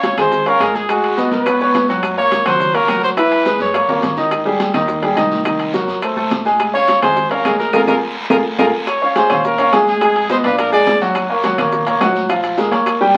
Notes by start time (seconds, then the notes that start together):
Already playing: C#4 C#5 F5
0.03 high bongo, high conga, high timbale, short guiro, maracas
0.17 F2 G#3 G#4 C5 G#5, high bongo, high conga, low conga, high timbale, short guiro, claves, maracas
0.32 high bongo, high conga, low conga, long guiro, maracas
0.46 C#4 A#4 C#5 F5, high bongo, high conga, high timbale, maracas
0.60 G#2 G#3 G#4 G#5, high bongo, low bongo, high conga, high timbale, short guiro, claves, maracas
0.75 G#4, high bongo, high conga, short guiro, maracas
0.89 G#3 F#4 G#4 G#5, high bongo, high conga, high timbale, long guiro, claves, maracas
1.03 high timbale, maracas
1.17 B3 B4 D#5, high bongo, high conga, short guiro, maracas
1.31 C#2 B4, high bongo, high conga, short guiro, maracas
1.46 B3 B4 C#5, high bongo, high conga, high timbale, long guiro, claves, maracas
1.60 B3 B4 C#5, high bongo, high conga, maracas
1.74 F#2, high bongo, low bongo, high conga, high timbale, low timbale, short guiro, maracas
1.88 F#3 F#4 F#5, high bongo, high conga, short guiro, maracas
2.03 high bongo, high conga, high timbale, long guiro, claves, maracas
2.17 A#3 A#4 C#5, high conga, maracas
2.32 high bongo, high conga, high timbale, short guiro, maracas
2.45 C#2 F#3 F#4 C5 F#5, high bongo, high conga, low conga, high timbale, short guiro, claves, maracas
2.60 high bongo, high conga, low conga, long guiro, maracas
2.74 A#3 A#4 C#5, high bongo, high conga, high timbale, maracas
2.88 C#2 F#3 F#4 F#5, high bongo, low bongo, high conga, high timbale, short guiro, claves, maracas
3.03 C5, high bongo, short guiro, maracas
3.17 E3 E4 B4 E5, high bongo, high conga, high timbale, long guiro, claves, maracas
3.32 high conga, high timbale, maracas
3.45 G#3 G#4 B4, high bongo, high conga, short guiro, maracas
3.60 F#2 C#5, high bongo, short guiro, maracas
3.74 A#3 A#4 C#5, high bongo, high timbale, long guiro, claves, maracas
3.88 F#2 A#3 A#4 C#5, high bongo, low conga, maracas
4.02 G#2, high bongo, low bongo, low conga, high timbale, low timbale, short guiro, maracas
4.17 D#3 D#4 D#5, high bongo, low conga, short guiro, maracas
4.31 high bongo, high conga, high timbale, long guiro, claves, maracas
4.45 G3 G4 G#4, high conga, maracas
4.60 high bongo, high conga, high timbale, short guiro, maracas
4.74 D#2 D#3 D#4 D#5, high bongo, high conga, low conga, high timbale, short guiro, claves, maracas
4.88 high bongo, high conga, long guiro, maracas
5.02 G3 G4 G#4, high bongo, high conga, high timbale, maracas
5.16 C2 D#3 D#4 D#5, high bongo, low bongo, high conga, high timbale, low timbale, short guiro, claves, maracas
5.31 high bongo, high conga, short guiro, maracas
5.45 D#3 D#4 D#5, high bongo, high timbale, long guiro, claves, maracas
5.59 high conga, high timbale, maracas
5.73 F#3 F#4 A#4, high bongo, high conga, short guiro, maracas
5.88 F2, high bongo, high conga, short guiro, maracas
6.02 A3 A4 C5, high bongo, high conga, high timbale, long guiro, claves, maracas
6.16 C2 A3 A4 C5, high bongo, high conga, maracas
6.30 A#1, high bongo, low bongo, high conga, high timbale, low timbale, short guiro, maracas
6.45 G#3 G#4 G#5, high bongo, high conga, short guiro, maracas
6.59 high bongo, high conga, high timbale, long guiro, claves, maracas
6.73 C#4 C#5 F5, high conga, maracas
6.88 high bongo, high conga, high timbale, short guiro, maracas
7.02 F2 G#3 G#4 C5 G#5, high bongo, high conga, low conga, high timbale, short guiro, claves, maracas
7.16 high bongo, high conga, low conga, long guiro, maracas
7.30 C#4 A#4 C#5 F5, high bongo, high conga, high timbale, maracas
7.45 A#1 G#3 G#4 G#5, high bongo, low bongo, high conga, high timbale, short guiro, claves, maracas
7.59 A#4, high bongo, high conga, short guiro, maracas
7.73 A#1 F4 G#4 A#4, low bongo, high conga, high timbale, long guiro, claves, maracas
7.87 A#1 F4 G#4 A#4, low bongo, high conga, high timbale, long guiro, claves, maracas
8.30 A#1 F4 G#4 A#4, low bongo, high conga, high timbale, long guiro, claves, maracas
8.58 A#1 F4 G#4 A#4, low bongo, high conga, high timbale, long guiro, claves, maracas
8.87 C#5, high bongo, high conga, high timbale, long guiro, claves, maracas
9.02 C#4 C#5 F5, high conga
9.15 G#3 G#4 C5 G#5, high bongo, high conga, high timbale, low timbale, short guiro, maracas
9.30 A#2 C#4 C#5 F5, high conga, low conga, high timbale, short guiro, claves, maracas
9.44 A#4, high bongo, high conga, long guiro, maracas
9.58 C#4 C#5 F5, high timbale, maracas
9.72 F2 G#3 G#4 G#5, high bongo, low bongo, high conga, high timbale, low timbale, short guiro, claves, maracas
9.87 G#4, high conga, short guiro, maracas
10.01 G#3 G#4 G#5, high bongo, high timbale, long guiro, claves, maracas
10.16 high bongo, high conga, high timbale
10.29 B3 B4 C5 D#5, high bongo, high conga, low timbale, short guiro, maracas
10.44 A#1 D4 B4 D5 F5, high timbale, short guiro, maracas
10.58 A#4, high bongo, high conga, high timbale, long guiro, claves, maracas
10.72 G#3 G#4 D5 G#5, high bongo, high conga, maracas
10.87 D#2, high bongo, low bongo, high conga, high timbale, low timbale, short guiro, maracas
11.01 F#3 F#4 F#5, high bongo, short guiro, maracas
11.15 high bongo, high conga, high timbale, long guiro, claves, maracas
11.29 A#3 A#4 C#5, high conga
11.43 F#3 F#4 F#5, high bongo, high conga, high timbale, low timbale, short guiro, maracas
11.58 A#1 A#3 A#4 C#5, high conga, low conga, high timbale, short guiro, claves, maracas
11.72 high bongo, high conga, low conga, long guiro, maracas
11.87 A#3 A#4 C#5, high conga, high timbale, maracas
12.00 A#1 F#3 F#4 F#5, high bongo, low bongo, high conga, high timbale, low timbale, short guiro, claves, maracas
12.15 high conga, short guiro, maracas
12.29 F3 F4 F5, high bongo, high conga, high timbale, long guiro, claves, maracas
12.44 high bongo, high timbale, maracas
12.57 G#3 G#4 A#4, high bongo, high conga, low timbale, short guiro, maracas
12.71 D#2 A#3 A#4 C#5, high timbale, short guiro, maracas
12.86 high bongo, high timbale, long guiro, claves, maracas
13.01 G3 G4 G5, high bongo, high conga